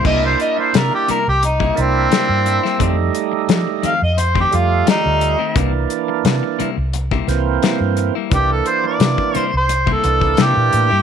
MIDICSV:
0, 0, Header, 1, 8, 480
1, 0, Start_track
1, 0, Tempo, 688863
1, 38, Time_signature, 4, 2, 24, 8
1, 7680, End_track
2, 0, Start_track
2, 0, Title_t, "Harmonica"
2, 0, Program_c, 0, 22
2, 40, Note_on_c, 0, 75, 91
2, 153, Note_off_c, 0, 75, 0
2, 178, Note_on_c, 0, 72, 68
2, 278, Note_off_c, 0, 72, 0
2, 287, Note_on_c, 0, 75, 78
2, 397, Note_off_c, 0, 75, 0
2, 415, Note_on_c, 0, 72, 66
2, 530, Note_on_c, 0, 70, 78
2, 541, Note_off_c, 0, 72, 0
2, 639, Note_off_c, 0, 70, 0
2, 656, Note_on_c, 0, 67, 79
2, 757, Note_off_c, 0, 67, 0
2, 769, Note_on_c, 0, 70, 83
2, 878, Note_off_c, 0, 70, 0
2, 896, Note_on_c, 0, 67, 86
2, 997, Note_off_c, 0, 67, 0
2, 1008, Note_on_c, 0, 63, 77
2, 1259, Note_on_c, 0, 60, 98
2, 1269, Note_off_c, 0, 63, 0
2, 2179, Note_off_c, 0, 60, 0
2, 2694, Note_on_c, 0, 77, 98
2, 2800, Note_off_c, 0, 77, 0
2, 2809, Note_on_c, 0, 75, 73
2, 2925, Note_on_c, 0, 72, 77
2, 2936, Note_off_c, 0, 75, 0
2, 3036, Note_off_c, 0, 72, 0
2, 3067, Note_on_c, 0, 67, 76
2, 3174, Note_on_c, 0, 65, 83
2, 3185, Note_off_c, 0, 67, 0
2, 3398, Note_off_c, 0, 65, 0
2, 3412, Note_on_c, 0, 63, 101
2, 3869, Note_off_c, 0, 63, 0
2, 5815, Note_on_c, 0, 67, 85
2, 5934, Note_on_c, 0, 69, 79
2, 5944, Note_off_c, 0, 67, 0
2, 6047, Note_on_c, 0, 72, 85
2, 6057, Note_off_c, 0, 69, 0
2, 6157, Note_off_c, 0, 72, 0
2, 6181, Note_on_c, 0, 74, 79
2, 6522, Note_off_c, 0, 74, 0
2, 6522, Note_on_c, 0, 72, 79
2, 6636, Note_off_c, 0, 72, 0
2, 6670, Note_on_c, 0, 72, 82
2, 6910, Note_on_c, 0, 69, 92
2, 6920, Note_off_c, 0, 72, 0
2, 7264, Note_on_c, 0, 67, 101
2, 7274, Note_off_c, 0, 69, 0
2, 7680, Note_off_c, 0, 67, 0
2, 7680, End_track
3, 0, Start_track
3, 0, Title_t, "Tonewheel organ"
3, 0, Program_c, 1, 16
3, 25, Note_on_c, 1, 58, 67
3, 29, Note_on_c, 1, 62, 63
3, 37, Note_on_c, 1, 64, 74
3, 829, Note_off_c, 1, 58, 0
3, 831, Note_off_c, 1, 62, 0
3, 835, Note_off_c, 1, 64, 0
3, 1221, Note_on_c, 1, 58, 71
3, 1228, Note_on_c, 1, 62, 63
3, 1234, Note_on_c, 1, 64, 78
3, 1829, Note_off_c, 1, 58, 0
3, 1833, Note_off_c, 1, 62, 0
3, 1835, Note_off_c, 1, 64, 0
3, 1944, Note_on_c, 1, 55, 88
3, 1949, Note_on_c, 1, 57, 68
3, 1956, Note_on_c, 1, 63, 88
3, 2748, Note_off_c, 1, 55, 0
3, 2750, Note_off_c, 1, 57, 0
3, 2754, Note_off_c, 1, 63, 0
3, 3145, Note_on_c, 1, 55, 74
3, 3154, Note_on_c, 1, 57, 64
3, 3157, Note_on_c, 1, 65, 78
3, 3751, Note_off_c, 1, 55, 0
3, 3755, Note_off_c, 1, 57, 0
3, 3757, Note_off_c, 1, 65, 0
3, 3866, Note_on_c, 1, 52, 70
3, 3871, Note_on_c, 1, 58, 68
3, 3877, Note_on_c, 1, 62, 74
3, 4669, Note_off_c, 1, 52, 0
3, 4672, Note_off_c, 1, 58, 0
3, 4675, Note_off_c, 1, 62, 0
3, 5069, Note_on_c, 1, 52, 80
3, 5074, Note_on_c, 1, 58, 74
3, 5079, Note_on_c, 1, 60, 94
3, 5673, Note_off_c, 1, 52, 0
3, 5676, Note_off_c, 1, 58, 0
3, 5678, Note_off_c, 1, 60, 0
3, 5785, Note_on_c, 1, 52, 71
3, 5797, Note_on_c, 1, 58, 63
3, 5801, Note_on_c, 1, 62, 72
3, 6589, Note_off_c, 1, 52, 0
3, 6596, Note_off_c, 1, 58, 0
3, 6597, Note_off_c, 1, 62, 0
3, 6991, Note_on_c, 1, 52, 72
3, 6997, Note_on_c, 1, 58, 58
3, 7006, Note_on_c, 1, 62, 69
3, 7595, Note_off_c, 1, 52, 0
3, 7598, Note_off_c, 1, 58, 0
3, 7602, Note_off_c, 1, 62, 0
3, 7680, End_track
4, 0, Start_track
4, 0, Title_t, "Clean electric guitar"
4, 0, Program_c, 2, 27
4, 36, Note_on_c, 2, 48, 63
4, 42, Note_on_c, 2, 55, 63
4, 45, Note_on_c, 2, 58, 67
4, 50, Note_on_c, 2, 64, 70
4, 153, Note_off_c, 2, 64, 0
4, 158, Note_off_c, 2, 58, 0
4, 160, Note_off_c, 2, 48, 0
4, 163, Note_off_c, 2, 55, 0
4, 753, Note_on_c, 2, 48, 55
4, 760, Note_on_c, 2, 55, 57
4, 764, Note_on_c, 2, 58, 61
4, 772, Note_on_c, 2, 64, 64
4, 870, Note_off_c, 2, 64, 0
4, 873, Note_off_c, 2, 58, 0
4, 878, Note_off_c, 2, 48, 0
4, 878, Note_off_c, 2, 55, 0
4, 1113, Note_on_c, 2, 64, 63
4, 1120, Note_on_c, 2, 58, 53
4, 1122, Note_on_c, 2, 55, 46
4, 1125, Note_on_c, 2, 48, 44
4, 1223, Note_off_c, 2, 48, 0
4, 1229, Note_off_c, 2, 55, 0
4, 1230, Note_off_c, 2, 58, 0
4, 1233, Note_off_c, 2, 64, 0
4, 1466, Note_on_c, 2, 48, 57
4, 1475, Note_on_c, 2, 55, 66
4, 1484, Note_on_c, 2, 58, 55
4, 1488, Note_on_c, 2, 64, 57
4, 1585, Note_off_c, 2, 64, 0
4, 1590, Note_off_c, 2, 58, 0
4, 1593, Note_off_c, 2, 55, 0
4, 1595, Note_off_c, 2, 48, 0
4, 1836, Note_on_c, 2, 64, 54
4, 1847, Note_on_c, 2, 58, 54
4, 1854, Note_on_c, 2, 55, 49
4, 1946, Note_on_c, 2, 41, 86
4, 1949, Note_off_c, 2, 55, 0
4, 1952, Note_on_c, 2, 51, 78
4, 1954, Note_off_c, 2, 58, 0
4, 1954, Note_off_c, 2, 64, 0
4, 1957, Note_on_c, 2, 57, 81
4, 1961, Note_on_c, 2, 60, 83
4, 2064, Note_off_c, 2, 60, 0
4, 2070, Note_off_c, 2, 57, 0
4, 2074, Note_off_c, 2, 41, 0
4, 2075, Note_off_c, 2, 51, 0
4, 2664, Note_on_c, 2, 41, 53
4, 2672, Note_on_c, 2, 51, 64
4, 2677, Note_on_c, 2, 57, 53
4, 2685, Note_on_c, 2, 60, 58
4, 2786, Note_off_c, 2, 60, 0
4, 2791, Note_off_c, 2, 57, 0
4, 2793, Note_off_c, 2, 41, 0
4, 2795, Note_off_c, 2, 51, 0
4, 3030, Note_on_c, 2, 60, 69
4, 3036, Note_on_c, 2, 57, 54
4, 3039, Note_on_c, 2, 51, 53
4, 3044, Note_on_c, 2, 41, 48
4, 3139, Note_off_c, 2, 41, 0
4, 3143, Note_off_c, 2, 51, 0
4, 3146, Note_off_c, 2, 57, 0
4, 3148, Note_off_c, 2, 60, 0
4, 3387, Note_on_c, 2, 41, 52
4, 3391, Note_on_c, 2, 51, 55
4, 3398, Note_on_c, 2, 57, 57
4, 3404, Note_on_c, 2, 60, 59
4, 3506, Note_off_c, 2, 60, 0
4, 3511, Note_off_c, 2, 57, 0
4, 3514, Note_off_c, 2, 41, 0
4, 3517, Note_off_c, 2, 51, 0
4, 3754, Note_on_c, 2, 60, 52
4, 3763, Note_on_c, 2, 57, 52
4, 3770, Note_on_c, 2, 51, 40
4, 3871, Note_on_c, 2, 48, 70
4, 3872, Note_off_c, 2, 51, 0
4, 3873, Note_off_c, 2, 60, 0
4, 3875, Note_on_c, 2, 55, 73
4, 3876, Note_off_c, 2, 57, 0
4, 3879, Note_on_c, 2, 58, 69
4, 3884, Note_on_c, 2, 64, 66
4, 3984, Note_off_c, 2, 64, 0
4, 3990, Note_off_c, 2, 58, 0
4, 3994, Note_off_c, 2, 55, 0
4, 3997, Note_off_c, 2, 48, 0
4, 4591, Note_on_c, 2, 48, 63
4, 4599, Note_on_c, 2, 55, 70
4, 4606, Note_on_c, 2, 58, 66
4, 4609, Note_on_c, 2, 64, 74
4, 4713, Note_off_c, 2, 64, 0
4, 4716, Note_off_c, 2, 48, 0
4, 4718, Note_off_c, 2, 58, 0
4, 4720, Note_off_c, 2, 55, 0
4, 4958, Note_on_c, 2, 64, 67
4, 4961, Note_on_c, 2, 58, 67
4, 4966, Note_on_c, 2, 55, 64
4, 4971, Note_on_c, 2, 48, 58
4, 5070, Note_off_c, 2, 48, 0
4, 5074, Note_off_c, 2, 55, 0
4, 5075, Note_off_c, 2, 64, 0
4, 5076, Note_off_c, 2, 58, 0
4, 5312, Note_on_c, 2, 48, 57
4, 5321, Note_on_c, 2, 55, 66
4, 5326, Note_on_c, 2, 58, 67
4, 5331, Note_on_c, 2, 64, 70
4, 5430, Note_off_c, 2, 64, 0
4, 5435, Note_off_c, 2, 58, 0
4, 5437, Note_off_c, 2, 48, 0
4, 5440, Note_off_c, 2, 55, 0
4, 5681, Note_on_c, 2, 64, 56
4, 5688, Note_on_c, 2, 58, 50
4, 5697, Note_on_c, 2, 55, 45
4, 5821, Note_off_c, 2, 64, 0
4, 5825, Note_off_c, 2, 58, 0
4, 5829, Note_off_c, 2, 55, 0
4, 6511, Note_on_c, 2, 48, 54
4, 6519, Note_on_c, 2, 55, 52
4, 6524, Note_on_c, 2, 58, 62
4, 6529, Note_on_c, 2, 64, 65
4, 6630, Note_off_c, 2, 64, 0
4, 6633, Note_off_c, 2, 58, 0
4, 6637, Note_off_c, 2, 48, 0
4, 6638, Note_off_c, 2, 55, 0
4, 6873, Note_on_c, 2, 64, 52
4, 6880, Note_on_c, 2, 58, 60
4, 6885, Note_on_c, 2, 55, 57
4, 6886, Note_on_c, 2, 48, 45
4, 6986, Note_off_c, 2, 48, 0
4, 6989, Note_off_c, 2, 55, 0
4, 6990, Note_off_c, 2, 58, 0
4, 6993, Note_off_c, 2, 64, 0
4, 7228, Note_on_c, 2, 48, 55
4, 7237, Note_on_c, 2, 55, 54
4, 7242, Note_on_c, 2, 58, 59
4, 7246, Note_on_c, 2, 64, 62
4, 7347, Note_off_c, 2, 64, 0
4, 7352, Note_off_c, 2, 58, 0
4, 7356, Note_off_c, 2, 48, 0
4, 7357, Note_off_c, 2, 55, 0
4, 7595, Note_on_c, 2, 64, 50
4, 7604, Note_on_c, 2, 58, 45
4, 7611, Note_on_c, 2, 55, 45
4, 7680, Note_off_c, 2, 55, 0
4, 7680, Note_off_c, 2, 58, 0
4, 7680, Note_off_c, 2, 64, 0
4, 7680, End_track
5, 0, Start_track
5, 0, Title_t, "Fingered electric bass"
5, 0, Program_c, 3, 33
5, 36, Note_on_c, 3, 36, 83
5, 236, Note_off_c, 3, 36, 0
5, 522, Note_on_c, 3, 48, 84
5, 623, Note_off_c, 3, 48, 0
5, 890, Note_on_c, 3, 36, 75
5, 1182, Note_off_c, 3, 36, 0
5, 1241, Note_on_c, 3, 36, 79
5, 1438, Note_off_c, 3, 36, 0
5, 1597, Note_on_c, 3, 43, 80
5, 1798, Note_off_c, 3, 43, 0
5, 1949, Note_on_c, 3, 41, 97
5, 2152, Note_off_c, 3, 41, 0
5, 2433, Note_on_c, 3, 53, 88
5, 2537, Note_off_c, 3, 53, 0
5, 2802, Note_on_c, 3, 41, 72
5, 3097, Note_off_c, 3, 41, 0
5, 3159, Note_on_c, 3, 41, 75
5, 3357, Note_off_c, 3, 41, 0
5, 3523, Note_on_c, 3, 38, 74
5, 3721, Note_off_c, 3, 38, 0
5, 3873, Note_on_c, 3, 36, 97
5, 4074, Note_off_c, 3, 36, 0
5, 4353, Note_on_c, 3, 48, 92
5, 4456, Note_off_c, 3, 48, 0
5, 4719, Note_on_c, 3, 36, 70
5, 5016, Note_off_c, 3, 36, 0
5, 5069, Note_on_c, 3, 36, 82
5, 5272, Note_off_c, 3, 36, 0
5, 5437, Note_on_c, 3, 43, 82
5, 5638, Note_off_c, 3, 43, 0
5, 5795, Note_on_c, 3, 36, 90
5, 5995, Note_off_c, 3, 36, 0
5, 6272, Note_on_c, 3, 48, 78
5, 6377, Note_off_c, 3, 48, 0
5, 6644, Note_on_c, 3, 36, 70
5, 6939, Note_off_c, 3, 36, 0
5, 6999, Note_on_c, 3, 36, 86
5, 7198, Note_off_c, 3, 36, 0
5, 7240, Note_on_c, 3, 48, 74
5, 7350, Note_off_c, 3, 48, 0
5, 7364, Note_on_c, 3, 46, 80
5, 7467, Note_off_c, 3, 46, 0
5, 7480, Note_on_c, 3, 45, 75
5, 7590, Note_off_c, 3, 45, 0
5, 7607, Note_on_c, 3, 43, 71
5, 7680, Note_off_c, 3, 43, 0
5, 7680, End_track
6, 0, Start_track
6, 0, Title_t, "Muted clean electric guitar strokes"
6, 162, Note_on_c, 9, 29, 41
6, 231, Note_off_c, 9, 29, 0
6, 396, Note_on_c, 9, 29, 42
6, 466, Note_off_c, 9, 29, 0
6, 637, Note_on_c, 9, 29, 42
6, 707, Note_off_c, 9, 29, 0
6, 878, Note_on_c, 9, 29, 43
6, 948, Note_off_c, 9, 29, 0
6, 993, Note_on_c, 9, 29, 34
6, 1062, Note_off_c, 9, 29, 0
6, 1231, Note_on_c, 9, 29, 37
6, 1301, Note_off_c, 9, 29, 0
6, 1593, Note_on_c, 9, 29, 42
6, 1663, Note_off_c, 9, 29, 0
6, 1710, Note_on_c, 9, 29, 45
6, 1779, Note_off_c, 9, 29, 0
6, 2311, Note_on_c, 9, 29, 50
6, 2380, Note_off_c, 9, 29, 0
6, 2555, Note_on_c, 9, 29, 37
6, 2625, Note_off_c, 9, 29, 0
6, 2795, Note_on_c, 9, 29, 41
6, 2864, Note_off_c, 9, 29, 0
6, 2908, Note_on_c, 9, 29, 38
6, 2977, Note_off_c, 9, 29, 0
6, 3148, Note_on_c, 9, 29, 38
6, 3217, Note_off_c, 9, 29, 0
6, 3514, Note_on_c, 9, 29, 44
6, 3584, Note_off_c, 9, 29, 0
6, 3635, Note_on_c, 9, 29, 40
6, 3704, Note_off_c, 9, 29, 0
6, 3993, Note_on_c, 9, 29, 48
6, 4062, Note_off_c, 9, 29, 0
6, 4239, Note_on_c, 9, 29, 49
6, 4309, Note_off_c, 9, 29, 0
6, 4480, Note_on_c, 9, 29, 54
6, 4549, Note_off_c, 9, 29, 0
6, 4721, Note_on_c, 9, 29, 52
6, 4791, Note_off_c, 9, 29, 0
6, 4839, Note_on_c, 9, 29, 38
6, 4908, Note_off_c, 9, 29, 0
6, 5078, Note_on_c, 9, 29, 43
6, 5148, Note_off_c, 9, 29, 0
6, 5558, Note_on_c, 9, 29, 47
6, 5628, Note_off_c, 9, 29, 0
6, 5917, Note_on_c, 9, 29, 41
6, 5986, Note_off_c, 9, 29, 0
6, 6160, Note_on_c, 9, 29, 45
6, 6229, Note_off_c, 9, 29, 0
6, 6396, Note_on_c, 9, 29, 37
6, 6465, Note_off_c, 9, 29, 0
6, 6638, Note_on_c, 9, 29, 42
6, 6708, Note_off_c, 9, 29, 0
6, 6749, Note_on_c, 9, 29, 37
6, 6819, Note_off_c, 9, 29, 0
6, 7355, Note_on_c, 9, 29, 48
6, 7425, Note_off_c, 9, 29, 0
6, 7474, Note_on_c, 9, 29, 41
6, 7544, Note_off_c, 9, 29, 0
6, 7680, End_track
7, 0, Start_track
7, 0, Title_t, "Muted fingered electric bass strokes"
7, 758, Note_on_c, 9, 29, 35
7, 828, Note_off_c, 9, 29, 0
7, 2670, Note_on_c, 9, 29, 29
7, 2740, Note_off_c, 9, 29, 0
7, 4599, Note_on_c, 9, 29, 30
7, 4669, Note_off_c, 9, 29, 0
7, 6518, Note_on_c, 9, 29, 31
7, 6588, Note_off_c, 9, 29, 0
7, 7680, End_track
8, 0, Start_track
8, 0, Title_t, "Drums"
8, 34, Note_on_c, 9, 36, 95
8, 34, Note_on_c, 9, 49, 89
8, 103, Note_off_c, 9, 36, 0
8, 103, Note_off_c, 9, 49, 0
8, 276, Note_on_c, 9, 42, 50
8, 346, Note_off_c, 9, 42, 0
8, 516, Note_on_c, 9, 42, 77
8, 524, Note_on_c, 9, 38, 102
8, 586, Note_off_c, 9, 42, 0
8, 593, Note_off_c, 9, 38, 0
8, 756, Note_on_c, 9, 42, 62
8, 825, Note_off_c, 9, 42, 0
8, 995, Note_on_c, 9, 42, 77
8, 1064, Note_off_c, 9, 42, 0
8, 1116, Note_on_c, 9, 36, 80
8, 1186, Note_off_c, 9, 36, 0
8, 1235, Note_on_c, 9, 42, 53
8, 1304, Note_off_c, 9, 42, 0
8, 1474, Note_on_c, 9, 42, 74
8, 1482, Note_on_c, 9, 38, 101
8, 1544, Note_off_c, 9, 42, 0
8, 1551, Note_off_c, 9, 38, 0
8, 1714, Note_on_c, 9, 42, 61
8, 1784, Note_off_c, 9, 42, 0
8, 1847, Note_on_c, 9, 38, 35
8, 1917, Note_off_c, 9, 38, 0
8, 1951, Note_on_c, 9, 36, 107
8, 1953, Note_on_c, 9, 42, 79
8, 2021, Note_off_c, 9, 36, 0
8, 2022, Note_off_c, 9, 42, 0
8, 2192, Note_on_c, 9, 42, 58
8, 2262, Note_off_c, 9, 42, 0
8, 2430, Note_on_c, 9, 42, 88
8, 2438, Note_on_c, 9, 38, 101
8, 2500, Note_off_c, 9, 42, 0
8, 2507, Note_off_c, 9, 38, 0
8, 2672, Note_on_c, 9, 42, 65
8, 2742, Note_off_c, 9, 42, 0
8, 2913, Note_on_c, 9, 42, 83
8, 2982, Note_off_c, 9, 42, 0
8, 3035, Note_on_c, 9, 36, 82
8, 3104, Note_off_c, 9, 36, 0
8, 3153, Note_on_c, 9, 42, 67
8, 3223, Note_off_c, 9, 42, 0
8, 3394, Note_on_c, 9, 42, 84
8, 3401, Note_on_c, 9, 38, 106
8, 3463, Note_off_c, 9, 42, 0
8, 3471, Note_off_c, 9, 38, 0
8, 3632, Note_on_c, 9, 42, 63
8, 3701, Note_off_c, 9, 42, 0
8, 3872, Note_on_c, 9, 36, 102
8, 3873, Note_on_c, 9, 42, 75
8, 3942, Note_off_c, 9, 36, 0
8, 3943, Note_off_c, 9, 42, 0
8, 4112, Note_on_c, 9, 42, 58
8, 4181, Note_off_c, 9, 42, 0
8, 4354, Note_on_c, 9, 42, 81
8, 4361, Note_on_c, 9, 38, 106
8, 4423, Note_off_c, 9, 42, 0
8, 4431, Note_off_c, 9, 38, 0
8, 4597, Note_on_c, 9, 42, 58
8, 4667, Note_off_c, 9, 42, 0
8, 4832, Note_on_c, 9, 42, 77
8, 4901, Note_off_c, 9, 42, 0
8, 4957, Note_on_c, 9, 36, 82
8, 5027, Note_off_c, 9, 36, 0
8, 5076, Note_on_c, 9, 42, 60
8, 5084, Note_on_c, 9, 38, 33
8, 5146, Note_off_c, 9, 42, 0
8, 5153, Note_off_c, 9, 38, 0
8, 5313, Note_on_c, 9, 42, 66
8, 5321, Note_on_c, 9, 38, 98
8, 5383, Note_off_c, 9, 42, 0
8, 5391, Note_off_c, 9, 38, 0
8, 5551, Note_on_c, 9, 42, 50
8, 5621, Note_off_c, 9, 42, 0
8, 5793, Note_on_c, 9, 42, 70
8, 5794, Note_on_c, 9, 36, 108
8, 5863, Note_off_c, 9, 42, 0
8, 5864, Note_off_c, 9, 36, 0
8, 6032, Note_on_c, 9, 42, 51
8, 6101, Note_off_c, 9, 42, 0
8, 6271, Note_on_c, 9, 42, 84
8, 6279, Note_on_c, 9, 38, 112
8, 6341, Note_off_c, 9, 42, 0
8, 6349, Note_off_c, 9, 38, 0
8, 6397, Note_on_c, 9, 36, 72
8, 6467, Note_off_c, 9, 36, 0
8, 6513, Note_on_c, 9, 42, 61
8, 6582, Note_off_c, 9, 42, 0
8, 6753, Note_on_c, 9, 42, 85
8, 6823, Note_off_c, 9, 42, 0
8, 6878, Note_on_c, 9, 36, 80
8, 6948, Note_off_c, 9, 36, 0
8, 6994, Note_on_c, 9, 42, 70
8, 7063, Note_off_c, 9, 42, 0
8, 7117, Note_on_c, 9, 36, 74
8, 7187, Note_off_c, 9, 36, 0
8, 7227, Note_on_c, 9, 42, 85
8, 7235, Note_on_c, 9, 38, 102
8, 7297, Note_off_c, 9, 42, 0
8, 7304, Note_off_c, 9, 38, 0
8, 7474, Note_on_c, 9, 42, 61
8, 7544, Note_off_c, 9, 42, 0
8, 7680, End_track
0, 0, End_of_file